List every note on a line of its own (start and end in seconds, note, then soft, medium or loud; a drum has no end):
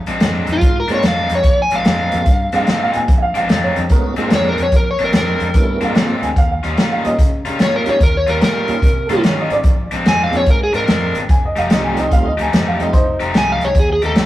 0.06 0.19 A#1 medium
0.06 0.20 A#2 medium
0.06 0.21 G#3 medium
0.06 0.21 C4 medium
0.06 0.22 D4 loud
0.06 closed hi-hat medium
0.20 0.45 F2 medium
0.20 0.52 A#2 medium
0.20 0.53 G#3 medium
0.20 0.53 C4 medium
0.20 0.53 D4 medium
0.20 snare loud
0.20 closed hi-hat medium
0.47 0.60 F2 medium
0.47 closed hi-hat medium
0.52 0.77 F4 medium
0.61 0.85 G#2 medium
0.61 kick loud
0.61 closed hi-hat medium
0.80 0.91 A#4 medium
0.88 1.01 G#2 medium
0.88 1.02 A#2 medium
0.88 1.03 G#3 medium
0.88 1.02 G#3 medium
0.88 1.02 A#3 medium
0.88 1.03 C4 medium
0.88 1.02 C4 medium
0.88 1.03 D4 medium
0.88 1.03 F4 medium
0.88 closed hi-hat medium
0.94 1.05 C#5 medium
1.03 1.26 F2 medium
1.03 1.34 A#2 medium
1.03 1.35 G#3 medium
1.03 1.35 C4 medium
1.03 1.35 D4 medium
1.03 snare loud
1.03 closed hi-hat medium
1.08 1.32 F5 medium
1.29 1.42 F2 medium
1.29 closed hi-hat medium
1.35 1.59 C#5 medium
1.43 1.67 A#1 medium
1.43 kick loud
1.43 closed hi-hat medium
1.62 1.73 G#5 medium
1.71 1.84 A#1 medium
1.71 1.85 A#2 medium
1.71 1.85 G#3 medium
1.71 1.85 C4 medium
1.71 1.86 D4 medium
1.71 closed hi-hat medium
1.76 2.93 F5 medium
1.85 2.09 F2 medium
1.85 2.17 A#2 medium
1.85 2.17 G#3 medium
1.85 2.17 C4 medium
1.85 2.17 D4 medium
1.85 snare loud
1.85 closed hi-hat medium
2.11 2.25 F2 medium
2.11 2.25 G#3 medium
2.11 2.25 A#3 medium
2.11 2.25 C4 medium
2.11 2.25 D4 medium
2.11 2.25 F4 medium
2.11 closed hi-hat medium
2.26 2.49 G2 medium
2.26 kick loud
2.26 closed hi-hat medium
2.52 2.65 G2 medium
2.52 2.66 A#2 medium
2.52 2.66 G#3 medium
2.52 2.67 G#3 medium
2.52 2.66 A#3 medium
2.52 2.67 C4 medium
2.52 2.66 C4 medium
2.52 2.67 D4 loud
2.52 2.66 D4 medium
2.52 2.66 G#4 medium
2.52 2.81 F5 medium
2.52 closed hi-hat medium
2.67 2.98 A#2 medium
2.67 2.91 A#2 medium
2.67 2.99 G#3 medium
2.67 2.99 C4 medium
2.67 2.99 D4 medium
2.67 snare loud
2.67 closed hi-hat medium
2.78 2.83 E5 medium
2.83 2.95 F5 medium
2.91 2.95 G5 medium
2.91 closed hi-hat medium
2.96 3.07 A#2 medium
2.96 3.22 G#5 medium
3.08 3.31 A#1 medium
3.08 kick loud
3.08 closed hi-hat medium
3.18 3.23 E5 medium
3.22 3.35 F5 medium
3.34 3.48 A#1 medium
3.34 3.47 A#2 medium
3.34 3.48 G#3 medium
3.34 3.48 C4 medium
3.34 3.48 D4 loud
3.34 3.63 F5 medium
3.34 closed hi-hat medium
3.48 3.73 F2 medium
3.48 3.80 A#2 medium
3.48 3.80 G#3 medium
3.48 3.80 C4 medium
3.48 3.80 D4 medium
3.48 snare loud
3.48 closed hi-hat medium
3.63 3.90 C#5 medium
3.76 3.89 F2 medium
3.76 closed hi-hat medium
3.89 4.13 G#2 medium
3.89 4.14 A3 medium
3.89 4.14 B3 medium
3.89 4.14 C#4 medium
3.89 4.15 D#4 medium
3.89 4.15 F#4 medium
3.89 4.24 A#4 loud
3.89 kick loud
3.89 closed hi-hat medium
4.16 4.30 G#2 medium
4.16 4.31 A#2 medium
4.16 4.31 G#3 medium
4.16 4.53 G#3 medium
4.16 4.53 A#3 medium
4.16 4.31 C4 medium
4.16 4.53 C4 medium
4.16 4.31 D4 loud
4.16 4.53 D4 medium
4.16 4.54 F4 medium
4.16 closed hi-hat medium
4.30 4.55 F2 medium
4.30 4.63 A#2 medium
4.30 4.63 G#3 medium
4.30 4.63 C4 medium
4.30 4.63 D4 medium
4.30 snare loud
4.30 closed hi-hat medium
4.35 4.46 C#5 medium
4.49 4.60 A#4 medium
4.58 4.71 F2 medium
4.58 closed hi-hat medium
4.62 4.74 C#5 medium
4.72 4.95 A#1 medium
4.72 kick loud
4.72 closed hi-hat medium
4.76 4.88 A#4 medium
4.91 5.02 C#5 medium
4.99 5.12 A#1 medium
4.99 5.13 A#2 medium
4.99 5.14 G#3 medium
4.99 5.14 C4 medium
4.99 5.13 D4 medium
4.99 closed hi-hat medium
5.04 5.15 A#4 medium
5.13 5.37 F2 medium
5.13 5.45 A#2 medium
5.13 5.45 G#3 medium
5.13 5.45 C4 medium
5.13 5.45 D4 medium
5.13 snare loud
5.13 closed hi-hat medium
5.17 5.95 A#4 medium
5.40 5.52 F2 medium
5.40 closed hi-hat medium
5.54 5.78 G2 medium
5.54 5.78 G3 medium
5.54 5.79 A3 medium
5.54 5.78 B3 medium
5.54 5.79 C#4 medium
5.54 5.79 E4 medium
5.54 kick loud
5.54 closed hi-hat medium
5.80 5.93 G2 medium
5.80 5.94 A#2 medium
5.80 6.16 G#3 medium
5.80 5.95 G#3 medium
5.80 6.16 A#3 medium
5.80 6.16 C4 medium
5.80 5.95 C4 medium
5.80 6.16 D4 medium
5.80 5.95 D4 loud
5.80 6.16 F4 medium
5.80 closed hi-hat medium
5.84 6.23 F5 medium
5.95 6.26 A#2 medium
5.95 6.19 A#2 medium
5.95 6.27 G#3 medium
5.95 6.27 C4 medium
5.95 6.27 D4 medium
5.95 snare loud
5.95 closed hi-hat medium
6.22 6.34 D2 medium
6.22 6.36 G#5 medium
6.22 closed hi-hat medium
6.36 6.59 D#2 medium
6.36 6.50 F5 medium
6.36 kick loud
6.36 closed hi-hat medium
6.52 6.91 F5 medium
6.63 6.76 D#2 medium
6.63 6.76 D#3 medium
6.63 6.77 G3 medium
6.63 6.77 C#4 medium
6.63 6.77 F4 medium
6.63 closed hi-hat medium
6.77 7.02 A#2 medium
6.77 7.09 D#3 medium
6.77 7.09 G3 medium
6.77 7.09 C#4 medium
6.77 7.09 F4 medium
6.77 snare loud
6.77 closed hi-hat medium
6.92 7.05 F5 medium
7.04 7.17 A#2 medium
7.04 7.17 G3 medium
7.04 7.17 A#3 medium
7.04 7.17 C#4 medium
7.04 7.17 D#4 medium
7.04 7.17 F4 medium
7.04 7.27 D#5 medium
7.04 closed hi-hat medium
7.19 7.42 C#3 medium
7.19 kick loud
7.19 closed hi-hat medium
7.45 7.59 C#3 medium
7.45 7.58 D#3 medium
7.45 7.59 G3 medium
7.45 7.60 C#4 medium
7.45 7.59 F4 loud
7.45 closed hi-hat medium
7.59 7.83 A#2 medium
7.59 7.91 D#3 medium
7.59 7.91 G3 medium
7.59 7.91 C#4 medium
7.59 7.91 F4 medium
7.59 7.74 C#5 medium
7.59 snare loud
7.59 closed hi-hat medium
7.76 7.88 A#4 medium
7.85 7.99 A#2 medium
7.85 7.99 G3 medium
7.85 7.99 A#3 medium
7.85 7.99 C#4 medium
7.85 7.99 D#4 medium
7.85 7.99 G4 medium
7.85 8.01 C#5 medium
7.85 closed hi-hat medium
8.00 8.24 D#2 medium
8.00 8.15 A#4 medium
8.00 kick loud
8.00 closed hi-hat medium
8.17 8.29 C#5 medium
8.27 8.40 D#2 medium
8.27 8.40 D#3 medium
8.27 8.40 G3 medium
8.27 8.40 C#4 medium
8.27 8.41 F4 medium
8.27 8.42 A#4 medium
8.27 closed hi-hat medium
8.41 8.65 A#2 medium
8.41 8.72 D#3 medium
8.41 8.72 G3 medium
8.41 8.73 C#4 medium
8.41 8.73 F4 medium
8.41 9.22 A#4 loud
8.41 snare loud
8.41 closed hi-hat medium
8.67 8.81 A#2 medium
8.67 8.81 G3 medium
8.67 8.81 A#3 medium
8.67 8.81 C#4 medium
8.67 8.81 D#4 medium
8.67 8.81 F4 medium
8.67 closed hi-hat medium
8.82 9.05 C3 medium
8.82 kick loud
8.82 closed hi-hat medium
9.07 9.22 C3 medium
9.07 9.22 G3 medium
9.07 9.22 A#3 medium
9.07 9.22 C#4 medium
9.07 9.23 C#4 loud
9.07 9.22 D#4 medium
9.07 9.23 F4 medium
9.07 9.10 A4 medium
9.07 9.24 A#4 medium
9.07 closed hi-hat medium
9.11 9.22 D#3 medium
9.23 9.54 D#3 medium
9.23 9.47 D#3 medium
9.23 9.54 G3 medium
9.23 9.55 C#4 medium
9.23 9.55 F4 medium
9.23 9.38 C#5 medium
9.23 snare loud
9.23 closed hi-hat medium
9.39 9.52 D#5 medium
9.50 9.63 G#1 medium
9.50 9.98 D5 medium
9.50 closed hi-hat medium
9.63 9.88 A#1 medium
9.63 kick loud
9.63 closed hi-hat medium
9.91 10.04 A#1 medium
9.91 10.05 A#2 medium
9.91 10.05 G#3 medium
9.91 10.06 C4 medium
9.91 10.06 D4 loud
9.91 closed hi-hat medium
10.06 10.29 F2 medium
10.06 10.37 A#2 medium
10.06 10.37 G#3 medium
10.06 10.37 C4 medium
10.06 10.38 D4 medium
10.06 10.20 G#5 loud
10.06 snare loud
10.06 closed hi-hat medium
10.24 10.35 F5 medium
10.31 10.45 F2 medium
10.31 10.45 G#3 medium
10.31 10.45 A#3 medium
10.31 10.45 C4 soft
10.31 10.45 D4 medium
10.31 10.46 F4 medium
10.31 closed hi-hat medium
10.37 10.48 C#5 medium
10.46 10.70 G#2 medium
10.46 kick loud
10.46 closed hi-hat medium
10.50 10.62 A#4 medium
10.63 10.75 G#4 medium
10.73 10.86 G#2 medium
10.73 10.87 A#2 medium
10.73 10.87 G#3 medium
10.73 10.87 C4 loud
10.73 10.88 D4 loud
10.73 11.15 A#4 medium
10.73 closed hi-hat medium
10.88 11.11 F2 medium
10.88 11.19 A#2 medium
10.88 11.19 G#3 medium
10.88 11.19 C4 medium
10.88 11.20 D4 medium
10.88 snare loud
10.88 closed hi-hat medium
11.15 11.28 G1 medium
11.15 closed hi-hat medium
11.29 11.52 F1 medium
11.29 11.43 G#5 medium
11.29 kick loud
11.29 closed hi-hat medium
11.45 11.58 D#5 medium
11.56 11.69 F1 medium
11.56 11.69 F3 medium
11.56 11.70 A3 medium
11.56 11.71 D#4 medium
11.56 11.70 G4 medium
11.56 11.71 F5 medium
11.56 closed hi-hat medium
11.70 11.94 C2 medium
11.70 12.02 F3 medium
11.70 12.33 G3 medium
11.70 12.33 A3 medium
11.70 12.02 A3 medium
11.70 12.33 C4 medium
11.70 12.34 D#4 medium
11.70 12.02 D#4 medium
11.70 12.34 F4 medium
11.70 12.02 G4 medium
11.70 11.85 D#5 medium
11.70 snare loud
11.70 closed hi-hat medium
11.84 11.97 G#5 medium
11.97 12.10 C2 medium
11.97 12.11 D#5 medium
11.97 closed hi-hat medium
12.11 12.35 D2 medium
12.11 12.25 F5 medium
12.11 kick loud
12.11 closed hi-hat medium
12.27 12.39 D#5 medium
12.37 12.51 D2 medium
12.37 12.51 F3 medium
12.37 12.52 A3 medium
12.37 12.52 D#4 medium
12.37 12.52 G4 loud
12.37 closed hi-hat medium
12.42 12.54 G#5 medium
12.53 12.76 F2 medium
12.53 12.84 F3 medium
12.53 12.84 A3 medium
12.53 12.84 D#4 medium
12.53 12.84 G4 medium
12.53 12.67 D#5 medium
12.53 snare loud
12.53 closed hi-hat medium
12.68 12.80 F5 medium
12.79 12.92 F2 medium
12.79 12.92 G3 medium
12.79 12.93 A3 medium
12.79 12.93 C4 medium
12.79 12.93 D#4 medium
12.79 12.93 F4 medium
12.79 12.94 D#5 medium
12.79 closed hi-hat medium
12.93 13.17 F1 medium
12.93 13.25 D#4 medium
12.93 13.26 C5 medium
12.93 kick loud
12.93 closed hi-hat medium
13.20 13.33 F1 medium
13.20 13.31 F3 medium
13.20 13.32 A3 medium
13.20 13.32 D#4 medium
13.20 13.33 G4 medium
13.20 closed hi-hat medium
13.33 13.58 C2 medium
13.33 13.65 F3 medium
13.33 13.65 A3 medium
13.33 13.65 D#4 medium
13.33 13.65 G4 medium
13.33 snare loud
13.33 closed hi-hat medium
13.38 13.50 G#5 medium
13.52 13.63 F5 medium
13.61 13.74 C2 medium
13.61 13.77 C#5 medium
13.61 closed hi-hat medium
13.75 13.98 D#2 medium
13.75 kick loud
13.75 closed hi-hat medium
13.79 13.91 G#4 medium
13.92 14.04 G#4 medium
14.02 14.15 D#2 medium
14.02 14.16 F3 medium
14.02 14.17 A3 medium
14.02 14.17 D#4 loud
14.02 14.17 G4 loud
14.02 14.26 A4 loud
14.02 closed hi-hat medium
14.15 14.26 C2 medium
14.15 14.26 F3 medium
14.15 14.26 A3 medium
14.15 14.26 D#4 medium
14.15 14.26 G4 medium
14.15 snare loud
14.15 closed hi-hat medium